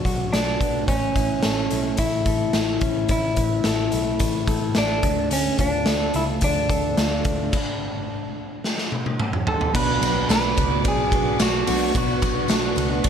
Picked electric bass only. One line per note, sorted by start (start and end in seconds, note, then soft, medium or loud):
0.05 0.28 B1 medium
0.33 0.56 B1 medium
0.61 0.83 B1 medium
0.89 1.11 A1 medium
1.16 1.39 A1 medium
1.45 1.67 A1 medium
1.72 1.94 B1 medium
1.99 2.21 A1 medium
2.26 2.49 A1 medium
2.54 2.77 A1 loud
2.82 3.05 A1 medium
3.10 3.32 A1 medium
3.37 3.60 A1 medium
3.65 3.88 A1 medium
3.93 4.16 B1 medium
4.20 4.43 A1 medium
4.48 4.71 A1 medium
4.77 4.99 A1 medium
5.03 5.49 D2 medium
5.59 5.82 D2 medium
5.87 6.10 D2 medium
6.14 6.37 C#2 medium
6.42 6.65 D2 medium
6.70 6.93 D2 medium
6.98 7.21 D2 medium
7.25 7.48 D2 medium
9.75 9.97 B1 loud
10.02 10.24 B1 loud
10.30 10.52 B1 loud
10.58 10.80 C#2 medium
10.85 11.08 B1 loud
11.12 11.35 B1 medium
11.40 11.62 B1 loud
11.69 11.90 B1 loud
11.95 12.17 B1 loud
12.23 12.45 B1 loud
12.49 12.72 B1 loud
12.76 12.99 C#2 medium
13.05 13.09 B1 medium